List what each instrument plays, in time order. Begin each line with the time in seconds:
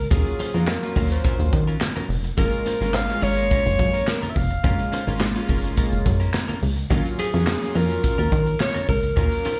Already playing: alto saxophone A#4
0.11 analog synth bass D#2, clean electric guitar F#3 C#4 F4 A#4, analog polysynth F#3 A#3 C#4 F4, alto saxophone G#4, kick, closed hi-hat, muted conga
0.26 closed hi-hat
0.39 clean electric guitar F#3 C#4 F4 C5, closed hi-hat, muted conga
0.54 analog synth bass F2, analog polysynth F#3 A#3 C#4 F4, clean electric guitar F#3 C#4 F4 A#4, closed hi-hat
0.67 alto saxophone A#4, snare, clap, high conga
0.83 analog polysynth F#3 A#3 C#4 F4, muted clean electric guitar stroke, closed hi-hat
0.96 analog synth bass D#2, clean electric guitar F#3 C#4 F4 A#4, kick, open hi-hat
1.11 clean electric guitar F#3 C#4 F4 A#4, alto saxophone C5, closed hi-hat
1.24 clean electric guitar F#3 C#4 F4 A#4, kick, closed hi-hat, muted conga
1.39 analog synth bass D#2, muted clean electric guitar stroke, closed hi-hat
1.53 analog synth bass D#3, muted clean electric guitar stroke, kick, closed hi-hat, muted conga
1.67 clean electric guitar F#3 C#4 F4 A#4, closed hi-hat
1.81 muted clean electric guitar stroke, snare, clap, high conga
1.96 clean electric guitar F#3 C#4 F4 A#4, closed hi-hat, high conga
2.09 analog synth bass F1, open hi-hat
2.24 muted clean electric guitar stroke, closed hi-hat
2.37 analog synth bass F#1, analog polysynth G#3 A#3 C#4 F4, clean electric guitar A#3 C#4 F4 A#4, alto saxophone A#4, kick, closed hi-hat, muted conga
2.53 closed hi-hat
2.66 clean electric guitar A#3 C#4 F4 C5, closed hi-hat, muted conga
2.81 analog synth bass G#1, analog polysynth G#3 A#3 C#4 F4, clean electric guitar A#3 C#4 F4 A#4, closed hi-hat
2.94 alto saxophone F5, snare, clap, high conga
3.09 analog polysynth G#3 A#3 C#4 F4, muted clean electric guitar stroke, closed hi-hat
3.22 analog synth bass G#1, clean electric guitar A#3 C#4 F4 A#4, alto saxophone C#5, open hi-hat
3.37 clean electric guitar A#3 C#4 F4 A#4, closed hi-hat
3.50 clean electric guitar A#3 C#4 F4 A#4, kick, closed hi-hat, muted conga
3.66 analog synth bass F#1, closed hi-hat
3.79 analog synth bass F#2, muted clean electric guitar stroke, kick, closed hi-hat, muted conga
3.93 clean electric guitar A#3 C#4 F4 A#4, closed hi-hat
4.07 alto saxophone A#4, snare, clap, high conga
4.22 clean electric guitar A#3 C#4 F4 A#4, closed hi-hat, high conga
4.30 alto saxophone E5
4.36 analog synth bass F1, alto saxophone F5, muted clean electric guitar stroke, kick, open hi-hat
4.50 muted clean electric guitar stroke, closed hi-hat
4.64 analog synth bass F#1, analog polysynth G#3 A#3 C#4 F4, clean electric guitar A#3 C#4 F4 A#4, kick, closed hi-hat, muted conga
4.79 closed hi-hat
4.92 clean electric guitar A#3 C#4 F4 C5, closed hi-hat, muted conga
5.07 analog synth bass G#1, analog polysynth G#3 A#3 C#4 F4, clean electric guitar A#3 C#4 F4 A#4, closed hi-hat
5.20 snare, clap, high conga
5.35 analog polysynth G#3 A#3 C#4 F4, muted clean electric guitar stroke, closed hi-hat
5.49 analog synth bass F#1, clean electric guitar A#3 C#4 F4 A#4, kick, open hi-hat
5.64 clean electric guitar A#3 C#4 F4 A#4, closed hi-hat
5.77 clean electric guitar A#3 C#4 F4 A#4, kick, closed hi-hat, muted conga
5.92 analog synth bass F#1, muted clean electric guitar stroke, closed hi-hat
6.05 analog synth bass F#2, muted clean electric guitar stroke, kick, closed hi-hat, muted conga
6.20 clean electric guitar A#3 C#4 F4 A#4, closed hi-hat
6.33 muted clean electric guitar stroke, snare, clap, high conga
6.48 clean electric guitar A#3 C#4 F4 A#4, closed hi-hat, high conga
6.62 analog synth bass C#2, muted clean electric guitar stroke, open hi-hat
6.77 muted clean electric guitar stroke, closed hi-hat
6.90 analog synth bass D#2, clean electric guitar F#3 C#4 F4 A#4, analog polysynth F#3 A#3 C#4 F4, kick, closed hi-hat, muted conga
7.05 closed hi-hat
7.18 clean electric guitar F#3 C#4 F4 C5, alto saxophone G#4, closed hi-hat, muted conga
7.33 analog synth bass F2, analog polysynth F#3 A#3 C#4 F4, clean electric guitar F#3 C#4 F4 A#4, closed hi-hat
7.47 snare, clap, high conga
7.62 analog polysynth F#3 A#3 C#4 F4, muted clean electric guitar stroke, closed hi-hat
7.75 analog synth bass F2, clean electric guitar F#3 C#4 F4 A#4, alto saxophone A#4, open hi-hat
7.90 clean electric guitar F#3 C#4 F4 A#4, closed hi-hat
8.03 muted clean electric guitar stroke, kick, closed hi-hat, muted conga
8.18 analog synth bass D#2, clean electric guitar F#3 C#4 F4 A#4, closed hi-hat
8.32 analog synth bass D#3, kick, closed hi-hat, muted conga
8.46 muted clean electric guitar stroke, closed hi-hat
8.60 alto saxophone C#5, muted clean electric guitar stroke, snare, clap, high conga
8.74 clean electric guitar F#3 C#4 F4 A#4, closed hi-hat, high conga
8.89 analog synth bass C#2, alto saxophone A#4, kick, open hi-hat
9.03 muted clean electric guitar stroke, closed hi-hat
9.16 analog synth bass D#2, clean electric guitar F#3 C#4 F4 A#4, analog polysynth F#3 A#3 C#4 F4, kick, closed hi-hat, muted conga
9.32 closed hi-hat
9.45 clean electric guitar F#3 C#4 F4 C5, closed hi-hat, muted conga